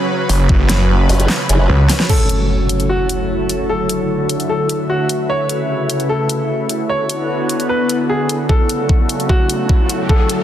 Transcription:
0.00 2.05 C#3 medium
0.00 2.05 F#3 medium
0.00 2.72 C#4 medium
0.00 2.74 F#4 medium
0.00 2.08 B4 medium
0.00 4.34 C#5 medium
0.29 1.08 F#1 loud
0.29 open hi-hat loud
0.49 kick loud
0.69 snare medium
0.69 closed hi-hat medium
1.09 1.28 F#1 loud
1.09 open hi-hat medium
1.20 closed hi-hat soft
1.29 snare loud
1.29 clap medium
1.49 1.68 F#1 loud
1.49 closed hi-hat medium
1.69 1.88 C#2 loud
1.89 snare medium
1.89 open hi-hat medium
2.00 snare medium
2.09 3.68 C#3 medium
2.09 3.69 F#3 medium
2.09 6.85 A3 medium
2.09 5.26 F#4 medium
2.09 2.82 A4 medium
2.09 crash medium
2.09 impact medium
2.25 4.34 E4 medium
2.25 4.34 A4 medium
2.29 closed hi-hat medium
2.69 closed hi-hat medium
2.80 closed hi-hat soft
2.89 3.62 F#4 medium
3.09 closed hi-hat medium
3.49 closed hi-hat medium
3.69 5.29 D3 medium
3.69 5.28 D3 medium
3.69 4.42 A4 medium
3.89 closed hi-hat medium
4.00 5.94 F#4 medium
4.00 5.94 E5 medium
4.29 closed hi-hat medium
4.40 5.94 B4 medium
4.40 closed hi-hat soft
4.49 4.74 A4 medium
4.69 closed hi-hat medium
4.90 5.14 F#4 medium
5.09 closed hi-hat medium
5.29 6.88 C#3 medium
5.29 10.43 E4 medium
5.29 6.88 E4 medium
5.29 6.02 C#5 medium
5.49 closed hi-hat medium
5.86 10.43 A4 medium
5.86 closed hi-hat medium
6.00 6.89 C#5 medium
6.00 closed hi-hat soft
6.09 6.82 A4 medium
6.29 closed hi-hat medium
6.69 closed hi-hat medium
6.89 8.48 D3 medium
6.89 8.48 B3 medium
6.89 9.14 B3 medium
6.89 8.48 F#4 medium
6.89 7.62 C#5 medium
7.10 closed hi-hat medium
7.49 closed hi-hat medium
7.60 8.49 D5 medium
7.60 closed hi-hat soft
7.69 7.94 B4 medium
7.89 closed hi-hat medium
8.10 8.34 G#4 medium
8.29 closed hi-hat medium
8.49 10.08 C#3 medium
8.49 10.09 F#3 medium
8.49 10.43 A3 medium
8.49 10.43 F#4 medium
8.49 9.22 A4 medium
8.49 kick loud
8.49 riser medium
8.69 closed hi-hat medium
8.89 kick loud
9.09 10.43 C#5 medium
9.09 closed hi-hat medium
9.20 closed hi-hat soft
9.29 10.02 F#4 medium
9.29 kick medium
9.50 closed hi-hat medium
9.69 kick medium
9.89 closed hi-hat medium
10.09 10.43 D3 medium
10.09 10.43 A4 medium
10.09 kick loud
10.29 10.43 F#4 medium
10.29 closed hi-hat medium

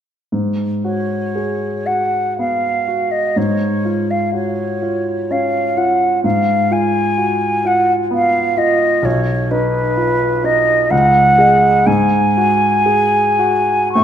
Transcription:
0.32 3.32 G#2 soft
0.84 1.67 F#4 soft
0.84 1.88 C#5 soft
1.35 1.87 G#4 soft
1.86 2.68 F#4 soft
1.86 2.38 F#5 soft
2.39 3.17 B3 soft
2.39 3.13 F5 soft
2.88 3.37 F#4 soft
3.11 3.39 D#5 soft
3.36 6.21 G#2 soft
3.36 4.12 C#5 soft
3.85 4.63 F4 soft
4.11 4.34 F5 soft
4.33 4.83 F#4 soft
4.33 5.33 C#5 soft
4.82 5.59 F4 soft
5.31 6.06 C#4 soft
5.31 5.79 F5 soft
5.77 6.24 F4 soft
5.77 6.23 F#5 soft
6.24 9.01 G#2 soft
6.24 6.74 F5 soft
6.71 7.47 F4 soft
6.71 7.68 G#5 medium
7.18 7.65 F#4 soft
7.65 8.40 F4 soft
7.65 7.93 F#5 medium
8.11 8.86 B3 soft
8.11 8.59 F5 soft
8.57 9.04 F4 soft
8.57 9.07 D#5 medium
9.03 10.87 B1 soft
9.03 9.53 C#5 medium
9.51 10.27 D#4 soft
9.51 10.46 B4 medium
9.97 10.45 F4 soft
10.44 10.91 D#4 soft
10.44 10.92 D#5 medium
10.90 11.83 C#2 soft
10.90 11.88 F#5 medium
11.38 11.83 G#4 soft
11.38 11.83 D#5 soft
11.86 13.89 G#2 soft
11.86 13.92 G#5 medium
12.37 13.17 F#4 soft
12.86 13.39 G#4 soft
13.39 13.94 F#4 soft
13.93 14.04 A2 soft
13.93 14.04 C#6 medium

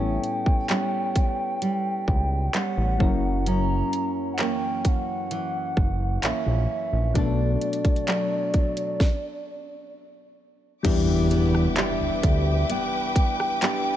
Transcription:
0.00 0.18 A1 loud
0.00 3.00 A2 medium
0.00 2.95 G3 medium
0.00 0.70 A3 medium
0.00 2.96 B3 medium
0.00 0.70 C#4 medium
0.00 2.96 C#4 medium
0.00 2.97 E4 medium
0.00 0.74 G4 medium
0.00 2.97 A4 medium
0.00 2.58 G5 loud
0.24 closed hi-hat medium
0.46 kick medium
0.69 1.60 G3 medium
0.69 2.53 B3 medium
0.69 2.55 C#4 medium
0.69 clap loud
0.69 closed hi-hat medium
1.16 kick medium
1.16 closed hi-hat medium
1.62 2.53 G3 medium
1.62 closed hi-hat medium
2.08 2.49 C#2 medium
2.08 kick medium
2.54 3.09 G3 medium
2.54 3.10 B3 medium
2.54 3.47 C#4 medium
2.54 3.47 F#5 loud
2.54 clap loud
2.54 closed hi-hat medium
2.77 2.98 A1 medium
2.98 3.83 F#1 loud
2.98 3.45 F#2 medium
2.98 6.65 F#3 medium
2.98 6.65 A#3 medium
2.98 6.65 C#4 medium
2.98 6.66 E4 medium
2.98 6.66 A#4 medium
2.98 kick loud
3.46 7.16 F#2 medium
3.46 4.39 C#4 medium
3.46 4.29 A#5 loud
3.46 closed hi-hat medium
3.93 closed hi-hat medium
4.34 4.42 F#5 medium
4.38 5.30 E3 medium
4.38 6.23 A#3 medium
4.38 6.23 C#4 medium
4.38 4.89 G5 loud
4.38 clap loud
4.38 closed hi-hat medium
4.85 6.27 F#5 loud
4.85 kick medium
4.85 closed hi-hat medium
5.31 6.22 E3 medium
5.31 closed hi-hat medium
5.77 6.18 F#1 medium
5.77 kick medium
6.23 6.33 A#1 soft
6.23 7.25 E3 medium
6.23 7.25 A#3 medium
6.23 7.16 C#4 medium
6.23 7.20 E5 medium
6.23 clap loud
6.23 closed hi-hat medium
6.46 6.67 A#1 medium
6.93 7.13 A#1 medium
7.14 7.57 B1 medium
7.14 9.09 B2 medium
7.14 8.96 F#3 medium
7.14 8.97 A3 medium
7.14 8.96 B3 medium
7.14 8.08 D4 medium
7.14 8.97 D4 medium
7.14 kick loud
7.14 closed hi-hat medium
7.18 8.98 A4 medium
7.18 9.94 D5 loud
7.61 closed hi-hat medium
7.73 closed hi-hat medium
7.85 kick loud
7.85 closed hi-hat soft
7.96 closed hi-hat soft
8.07 9.09 F#3 medium
8.07 9.10 A3 medium
8.07 9.60 D4 medium
8.07 clap loud
8.07 closed hi-hat medium
8.54 kick medium
8.54 closed hi-hat medium
8.77 closed hi-hat medium
9.00 kick loud
9.00 snare medium
10.83 11.67 E2 loud
10.83 13.96 E3 medium
10.83 13.96 G3 medium
10.83 13.96 B3 medium
10.83 13.96 D4 medium
10.83 13.96 E4 medium
10.83 13.96 G4 medium
10.83 13.96 B4 medium
10.83 13.96 E5 medium
10.83 13.96 G5 medium
10.83 13.96 D6 medium
10.83 kick loud
10.83 closed hi-hat medium
10.83 crash loud
10.83 impact medium
11.30 11.77 B3 medium
11.30 closed hi-hat medium
11.55 cross-stick medium
11.76 12.69 B3 medium
11.76 13.62 D4 medium
11.76 13.62 G4 medium
11.76 12.73 E5 medium
11.76 clap loud
11.76 closed hi-hat medium
12.01 12.10 D2 soft
12.23 12.65 D2 medium
12.23 kick medium
12.23 closed hi-hat medium
12.69 13.61 B3 medium
12.69 13.40 G5 loud
12.69 closed hi-hat medium
13.16 kick medium
13.16 closed hi-hat medium
13.40 13.96 G5 loud
13.40 cross-stick medium
13.62 13.96 B3 medium
13.62 13.96 D4 medium
13.62 13.96 G4 medium
13.62 clap loud
13.62 closed hi-hat medium

